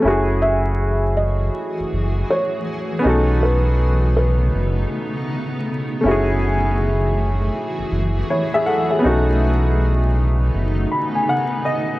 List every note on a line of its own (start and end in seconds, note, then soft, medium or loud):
0.00 2.98 A3 medium
0.00 2.99 C#4 medium
0.00 3.01 F#4 medium
0.00 3.01 G#4 medium
0.04 1.50 F#1 loud
0.04 3.01 E3 medium
0.04 11.99 A3 medium
0.04 3.00 E4 medium
0.04 3.02 F#4 medium
0.10 3.03 G#4 medium
0.42 1.12 E5 medium
1.17 1.74 D#5 medium
1.79 1.84 F#1 soft
1.93 2.23 F#1 medium
2.30 2.63 C#5 medium
2.99 5.97 B3 medium
2.99 5.98 C#4 medium
3.04 4.50 B1 medium
3.04 6.01 C#3 medium
3.04 6.01 B3 medium
3.04 6.00 D#4 medium
3.04 6.01 D#4 medium
3.04 6.01 F#4 medium
3.09 6.02 A4 medium
3.43 4.13 B4 medium
4.17 4.74 B4 medium
4.54 4.86 F#1 loud
6.01 7.50 F#1 loud
6.01 9.01 E3 medium
6.01 8.61 A3 medium
6.01 8.62 C#4 medium
6.01 9.01 F#4 medium
6.05 8.26 E4 medium
6.05 8.27 F#4 medium
6.05 9.01 G#4 medium
6.11 8.28 G#4 medium
7.78 7.84 F#1 soft
7.91 8.23 F#1 medium
8.30 8.52 E4 medium
8.30 8.52 C#5 medium
8.54 8.66 G#4 medium
8.54 8.66 E5 medium
8.66 8.89 A4 medium
8.66 8.89 F#5 medium
8.91 9.26 G#4 medium
8.91 9.26 E5 medium
8.99 11.97 B3 medium
8.99 11.99 B3 medium
8.99 11.99 C#4 medium
9.03 10.50 B1 medium
9.03 11.99 C#3 medium
9.03 11.99 D#4 medium
9.03 11.99 F#4 medium
9.09 11.99 A4 medium
10.54 10.86 F#1 loud
10.92 11.14 B5 medium
11.15 11.28 G#5 medium
11.29 11.64 F#5 medium
11.65 11.99 D#5 medium